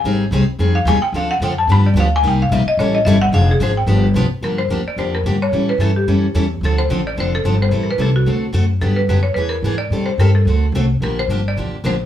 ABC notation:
X:1
M:4/4
L:1/16
Q:"Swing" 1/4=218
K:Gphr
V:1 name="Marimba"
a4 z6 f2 a2 g2 | f2 ^f2 g2 =a2 =b2 d2 =f2 _a2 | g2 f2 =e2 _e2 ^c2 e2 =e2 ^f2 | f2 A2 c2 g4 z6 |
[K:Gm] B2 c4 d2 c2 B4 ^c2- | ^c2 =B2 A2 G6 z4 | A2 c4 d2 c2 A4 c2- | c3/2 B/2 =B2 A2 ^F6 z4 |
A2 =B2 B2 ^c2 B2 _B4 d2- | d2 c2 B2 A6 z4 | B2 c4 d4 z2 c4 |]
V:2 name="Steel-string acoustic guitar"
[E,G,CEA]2 z2 [E,G,CEA]2 z2 [E,G,CEA]2 z2 [E,G,CEA]2 z2 | [D,F,CD=A]2 z2 [D,F,CDA]2 z2 [D,F,=B,DG]2 z2 [D,F,B,DG]2 z2 | [C,G,B,EG]2 z2 [C,G,B,EG]2 z2 [=E,G,^C=E=A]2 z2 [E,G,CEA]2 z2 | [D,F,CDA]2 z2 [D,F,CDA]2 z2 [D,F,=B,DG]2 z2 [D,F,B,DG]2 z2 |
[K:Gm] [D,F,B,DG]2 z2 [D,F,B,DG]2 z2 [D,F,B,DG]2 z2 [D,F,B,DG]2 z2 | [=E,G,^C=EA]2 z2 [E,G,CEA]2 z2 [E,G,CEA]2 z2 [E,G,CEA]2 z2 | [D,F,CDA]2 z2 [D,F,CDA]2 z2 [D,F,CDA]2 z2 [D,F,CDA]2 z2 | [=E,G,C=EA]2 z2 [E,G,CEA]2 z2 [D,A,C^FA]2 z2 [D,A,CFA]2 z2 |
[D,^F,=B,DG]2 z2 [D,F,B,DG]2 z2 [=E,B,D^G]2 z2 [E,B,DG]2 z2 | [E,G,CGA]2 z2 [E,G,CGA]2 z2 [D,A,C^FA]2 z2 [D,A,CFA]2 z2 | [D,F,B,DG]2 z2 [D,F,B,DG]2 z2 [D,F,B,DG]2 z2 [D,F,B,DG]2 z2 |]
V:3 name="Upright bass" clef=bass
A,,,4 C,,2 z2 F,,4 E,,2 z2 | D,,4 F,,4 G,,4 D,,4 | C,,4 B,,,2 z2 =A,,,4 G,,,4 | F,,,4 A,,,4 G,,,4 =B,,,2 z2 |
[K:Gm] G,,4 E,,2 z2 F,,4 G,,4 | A,,4 G,,4 ^F,,4 =E,,4 | D,,4 A,,,4 F,,,4 G,,,4 | A,,,4 C,,4 D,,4 ^F,,4 |
G,,4 ^F,,4 =E,,4 ^G,,4 | A,,2 z2 G,,4 D,,4 C,,4 | B,,,4 G,,,4 A,,,2 z2 B,,,4 |]